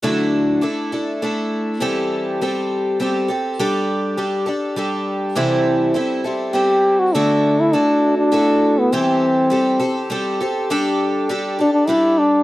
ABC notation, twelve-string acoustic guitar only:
X:1
M:3/4
L:1/8
Q:1/4=101
K:Dmix
V:1 name="Twelve-string acoustic guitar"
[D,F,A,DEA]2 [A,DEA] [A,DEA] [A,DEA]2 | [E,G,CGA]2 [G,CGA]2 [G,CGA] [CGA] | [G,DGA]2 [G,DGA] [DGA] [G,DGA]2 | [C,E,G,CEA]2 [G,CEA] [G,CEA] [G,CEA]2 |
[D,A,EFA]2 [A,EFA]2 [A,EFA]2 | [E,G,CGA]2 [G,CGA] [CGA] [G,CGA] [CGA] | [G,DGA]2 [G,DGA] [DGA] [G,DGA]2 |]